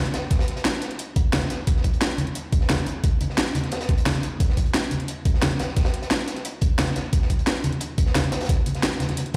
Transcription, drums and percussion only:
0.06 closed hi-hat soft
0.14 snare loud
0.14 closed hi-hat medium
0.22 snare soft
0.30 kick loud
0.30 snare medium
0.30 closed hi-hat medium
0.39 snare medium
0.39 closed hi-hat medium
0.48 snare soft
0.48 closed hi-hat medium
0.56 snare medium
0.56 closed hi-hat medium
0.65 snare loud
0.65 closed hi-hat medium
0.73 snare soft
0.81 snare soft
0.81 closed hi-hat medium
0.90 snare soft
0.90 closed hi-hat soft
0.99 closed hi-hat medium
1.16 kick loud
1.16 closed hi-hat medium
1.33 snare loud
1.33 closed hi-hat medium
1.33 high conga medium
1.42 snare soft
1.42 closed hi-hat soft
1.50 snare medium
1.50 closed hi-hat medium
1.67 kick loud
1.67 closed hi-hat medium
1.76 snare soft
1.84 kick medium
1.84 closed hi-hat medium
1.93 closed hi-hat soft
2.01 snare loud
2.01 closed hi-hat medium
2.18 closed hi-hat medium
2.18 high conga medium
2.27 closed hi-hat soft
2.35 closed hi-hat medium
2.53 kick loud
2.53 closed hi-hat medium
2.61 snare soft
2.69 snare loud
2.69 closed hi-hat medium
2.69 high conga medium
2.78 closed hi-hat soft
2.87 closed hi-hat medium
3.04 kick loud
3.04 closed hi-hat medium
3.21 closed hi-hat medium
3.21 high conga medium
3.30 snare soft
3.38 snare loud
3.38 closed hi-hat medium
3.46 snare soft
3.55 closed hi-hat medium
3.55 high conga medium
3.64 snare soft
3.64 closed hi-hat soft
3.71 snare loud
3.71 closed hi-hat medium
3.81 snare medium
3.81 closed hi-hat medium
3.89 kick loud
3.89 snare soft
3.89 closed hi-hat medium
3.98 closed hi-hat medium
4.06 snare loud
4.06 closed hi-hat medium
4.06 high conga medium
4.15 snare soft
4.15 closed hi-hat soft
4.23 closed hi-hat medium
4.40 kick loud
4.40 closed hi-hat medium
4.49 snare soft
4.57 kick medium
4.57 closed hi-hat medium
4.66 closed hi-hat soft
4.74 snare loud
4.74 closed hi-hat medium
4.91 closed hi-hat medium
4.91 high conga medium
5.00 closed hi-hat soft
5.08 closed hi-hat medium
5.25 kick loud
5.25 closed hi-hat medium
5.34 snare soft
5.42 snare loud
5.42 closed hi-hat medium
5.42 high conga medium
5.51 closed hi-hat soft
5.59 snare loud
5.59 closed hi-hat medium
5.68 snare soft
5.76 kick loud
5.76 snare soft
5.76 closed hi-hat medium
5.85 snare loud
5.85 closed hi-hat medium
5.94 snare soft
5.94 closed hi-hat medium
6.02 snare medium
6.02 closed hi-hat medium
6.10 snare loud
6.10 closed hi-hat medium
6.19 snare soft
6.27 snare medium
6.27 closed hi-hat medium
6.36 snare soft
6.36 closed hi-hat soft
6.45 closed hi-hat medium
6.61 kick loud
6.61 closed hi-hat medium
6.79 snare loud
6.79 closed hi-hat medium
6.79 high conga medium
6.87 snare soft
6.87 closed hi-hat soft
6.96 snare medium
6.96 closed hi-hat medium
7.13 kick loud
7.13 closed hi-hat medium
7.22 snare soft
7.30 kick medium
7.30 closed hi-hat medium
7.39 closed hi-hat soft
7.47 snare loud
7.47 closed hi-hat medium
7.64 closed hi-hat medium
7.64 high conga medium
7.72 closed hi-hat soft
7.81 closed hi-hat medium
7.98 kick loud
7.98 closed hi-hat medium
8.06 snare soft
8.15 snare loud
8.15 closed hi-hat loud
8.15 closed hi-hat medium
8.15 high conga medium
8.24 closed hi-hat soft
8.32 snare loud
8.32 closed hi-hat medium
8.41 snare medium
8.41 closed hi-hat medium
8.45 snare medium
8.45 closed hi-hat medium
8.49 kick loud
8.49 closed hi-hat loud
8.49 closed hi-hat medium
8.66 closed hi-hat medium
8.66 high conga medium
8.75 snare soft
8.75 closed hi-hat soft
8.83 snare loud
8.83 closed hi-hat loud
8.83 closed hi-hat medium
8.92 snare soft
9.00 snare medium
9.00 closed hi-hat medium
9.00 high conga medium
9.02 closed hi-hat medium
9.09 snare soft
9.09 closed hi-hat soft
9.09 high conga medium
9.17 closed hi-hat loud
9.17 closed hi-hat medium
9.26 closed hi-hat soft

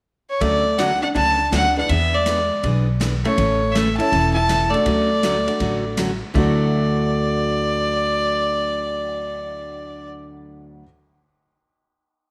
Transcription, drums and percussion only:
0.41 kick soft
0.41 ride medium
0.79 snare medium
0.79 hi-hat pedal medium
0.79 ride medium
1.15 kick soft
1.15 ride soft
1.53 snare medium
1.53 hi-hat pedal medium
1.53 ride medium
1.89 kick soft
1.89 ride medium
2.26 snare medium
2.26 hi-hat pedal medium
2.26 ride medium
2.63 kick soft
2.63 ride soft
3.01 snare medium
3.01 hi-hat pedal medium
3.01 ride medium
3.25 ride soft
3.38 kick soft
3.38 ride medium
3.75 snare medium
3.75 hi-hat pedal medium
3.75 ride medium
4.00 ride soft
4.12 kick soft
4.12 ride soft
4.49 snare medium
4.49 hi-hat pedal medium
4.49 ride medium
4.74 ride soft
4.86 kick soft
4.86 ride medium
5.23 snare medium
5.23 hi-hat pedal soft
5.23 ride medium
5.48 ride soft
5.60 kick soft
5.60 ride medium
5.97 snare medium
5.97 hi-hat pedal medium
5.97 ride medium
6.35 kick medium
6.35 crash medium
6.60 cymbal swell soft

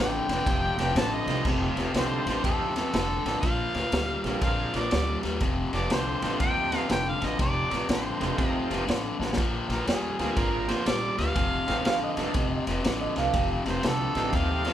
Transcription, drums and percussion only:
0.29 snare soft
0.29 ride medium
0.46 kick loud
0.46 snare soft
0.46 ride medium
0.78 snare soft
0.78 ride medium
0.96 snare loud
0.96 ride medium
1.28 snare soft
1.28 ride medium
1.45 kick loud
1.45 snare soft
1.45 crash loud
1.77 snare soft
1.77 ride medium
1.94 snare loud
1.94 ride medium
2.27 snare soft
2.27 ride medium
2.44 kick loud
2.44 snare soft
2.44 ride medium
2.76 snare soft
2.76 ride medium
2.93 snare loud
2.93 ride medium
3.26 snare soft
3.26 ride medium
3.43 kick loud
3.43 snare soft
3.43 ride medium
3.74 snare soft
3.74 ride soft
3.92 snare loud
3.92 ride medium
4.24 snare soft
4.24 ride medium
4.41 kick loud
4.41 snare soft
4.41 ride medium
4.74 snare soft
4.74 ride medium
4.91 snare loud
4.91 ride medium
5.23 snare soft
5.23 ride medium
5.40 kick loud
5.40 snare soft
5.40 ride medium
5.73 snare soft
5.73 ride soft
5.90 snare loud
5.90 ride medium
6.22 snare soft
6.22 ride medium
6.40 kick loud
6.40 snare soft
6.40 ride medium
6.72 snare soft
6.72 ride medium
6.89 snare loud
6.89 ride medium
7.22 snare soft
7.22 ride medium
7.39 kick loud
7.39 snare soft
7.39 ride medium
7.71 snare soft
7.71 ride medium
7.89 snare loud
7.89 ride medium
8.21 snare soft
8.21 ride medium
8.38 kick loud
8.38 snare soft
8.38 ride medium
8.71 snare soft
8.71 ride medium
8.88 snare loud
8.88 ride medium
9.22 snare medium
9.33 snare medium
9.38 kick loud
9.38 snare soft
9.38 ride medium
9.38 crash medium
9.70 snare soft
9.70 ride medium
9.87 snare loud
9.87 ride medium
10.19 snare soft
10.19 ride medium
10.37 kick loud
10.37 snare soft
10.37 ride medium
10.69 snare soft
10.69 ride medium
10.86 snare loud
10.86 ride medium
11.18 snare soft
11.18 ride medium
11.36 kick loud
11.36 snare soft
11.36 ride medium
11.68 snare soft
11.68 ride medium
11.85 snare loud
11.85 ride medium
12.17 snare soft
12.17 ride medium
12.34 kick loud
12.34 snare soft
12.34 ride medium
12.67 snare soft
12.67 ride medium
12.84 snare loud
12.84 ride medium
13.16 snare soft
13.16 ride medium
13.34 kick loud
13.34 snare soft
13.34 ride medium
13.66 snare soft
13.66 ride medium
13.83 snare loud
13.83 ride medium
14.15 snare soft
14.15 ride medium
14.33 kick loud
14.33 snare soft
14.33 ride medium
14.65 snare soft
14.65 ride medium

